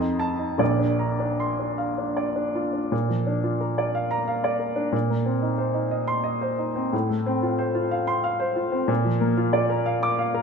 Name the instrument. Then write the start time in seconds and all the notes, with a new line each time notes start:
grand piano
Already playing: F2 D#5
0.01 D#4
0.19 A5
0.39 D#4
0.58 A#1 A#2 D5
0.79 D4
0.99 A#5
1.20 D4
1.40 C6
1.59 D4
1.78 F5
1.98 D4
2.17 D5
2.36 D4
2.55 F4
2.73 D4
2.92 A#2
3.09 F3
3.27 D4
3.44 F4
3.61 A#4
3.78 D5
3.95 F5
4.11 A#5
4.28 F5
4.44 D5
4.59 A#4
4.76 D4
4.92 A#2
5.10 A#3
5.26 C4
5.42 D#4
5.58 C5
5.74 D#4
5.91 D#5
6.08 C6
6.24 D#5
6.41 C5
6.58 D#4
6.76 C4
6.93 A2
7.09 A3
7.26 C4
7.43 F4
7.58 C5
7.75 F4
7.91 F5
8.07 C6
8.24 F5
8.40 C5
8.56 F4
8.72 C4
8.88 A#2
9.04 F3
9.20 A#3
9.37 F4
9.53 D5
9.70 A#4
9.86 F5
10.03 D6
10.19 F5
10.34 A#4